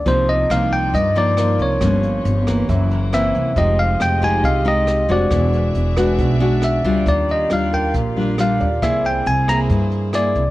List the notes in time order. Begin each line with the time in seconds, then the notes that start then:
0.06 C2 C3 F3 A#3 D#4 F4 C5 D5, kick, closed hi-hat
0.28 D#5, closed hi-hat
0.50 C2 F3 A#3 D#4 F5, cross-stick, closed hi-hat
0.72 G5, kick, closed hi-hat
0.94 G2 D#5, kick, closed hi-hat
1.15 F3 A#3 D#4 D5, closed hi-hat
1.37 F3 A#3 D#4 A#4, cross-stick, closed hi-hat
1.59 C2 C#5, kick, closed hi-hat
1.80 G1 G2 F3 A#3 C#4 G4 C#5, kick, cross-stick, closed hi-hat
2.03 closed hi-hat
2.25 G1, closed hi-hat
2.47 E3 A#3, kick, cross-stick, closed hi-hat
2.69 F#1 F#2 E4 F#4 C5 E5, kick, closed hi-hat
2.91 closed hi-hat
3.13 E3 A#3 C4 E5, cross-stick, closed hi-hat
3.35 C2, kick, closed hi-hat
3.56 F1 F3 G#3 D#4 F4 G4 D#5, kick, closed hi-hat
3.79 F5, closed hi-hat
4.00 F1 G5, cross-stick, closed hi-hat
4.22 G#3 D#4 G4 G#5, kick, closed hi-hat
4.44 C2 C3 D#5 F5, kick, closed hi-hat
4.65 G#3 D#4 G4 D#5, closed hi-hat
4.87 cross-stick, closed hi-hat
5.09 F1 G#3 D4 F#4 C5 D5, kick, closed hi-hat
5.31 E1 E3 F#4 G#4 D5 E5, kick, cross-stick, closed hi-hat
5.53 closed hi-hat
5.75 E1, closed hi-hat
5.97 G#3 D4 F#4 B4, kick, cross-stick, closed hi-hat
6.13 D5
6.18 B1 B2, kick, closed hi-hat
6.29 E5
6.40 G#3 D4 F#4, closed hi-hat
6.62 E5, cross-stick, closed hi-hat
6.85 C#2 G3 D4 F4, kick, closed hi-hat
7.06 D#2 D#3 F4 G4 D5 F5, kick, closed hi-hat
7.29 D#5, closed hi-hat
7.50 D#2 G3 D4 F4 F5, cross-stick, closed hi-hat
7.72 A#4 G5, kick, closed hi-hat
7.93 A#1 A#2, kick, closed hi-hat
8.16 G3 D4 F4, closed hi-hat
8.38 G3 D4 F4 F5, cross-stick, closed hi-hat
8.60 D#2 D5, kick, closed hi-hat
8.81 C2 C3 A#3 E4 G#4 C5 E5, kick, cross-stick, closed hi-hat
9.04 C5 G5, closed hi-hat
9.26 C2 G#5, closed hi-hat
9.48 A#3 E4 G#4 A#5, kick, cross-stick, closed hi-hat
9.69 G2, kick, closed hi-hat
9.91 closed hi-hat
10.13 A#3 E4 G#4 D5, cross-stick, closed hi-hat
10.35 C2, kick, closed hi-hat